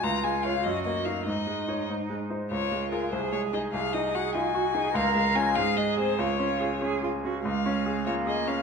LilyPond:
<<
  \new Staff \with { instrumentName = "Violin" } { \time 6/8 \key des \major \tempo 4. = 98 bes''8 aes''8 f''8 ees''8 ees''8 f''8 | ees''4. r4. | des''4 bes'8 c''8 des''8 ees''8 | f''8 ees''8 ges''8 aes''4. |
f''8 f''8 aes''8 f''8 ees''8 c''8 | des''4. r4. | f''4. des''8 ees''8 f''8 | }
  \new Staff \with { instrumentName = "Cello" } { \time 6/8 \key des \major f'4. ges'4. | ees'2~ ees'16 r8. | f'4. aes'4. | aes'4. f'8 ges'8 aes'8 |
bes'4. aes'4. | f'4. aes'8 f'8 ges'8 | aes4. bes4. | }
  \new Staff \with { instrumentName = "Grand piano" } { \time 6/8 \key des \major des,8 aes8 <f' des''>8 ges,8 bes8 <ees' ees''>8 | aes,8 aes8 <ees' des''>8 aes,8 aes8 <ees' c''>8 | des,8 aes8 <f' aes'>8 c,8 aes8 <ees' aes'>8 | c,8 ees'8 ges'8 ees'8 ges'8 ees'8 |
des,8 aes8 <des' f'>8 aes,8 aes8 <c' aes'>8 | des,8 des'8 aes'8 des'8 aes'8 des'8 | des,8 des'8 aes'8 f'8 aes'8 des'8 | }
>>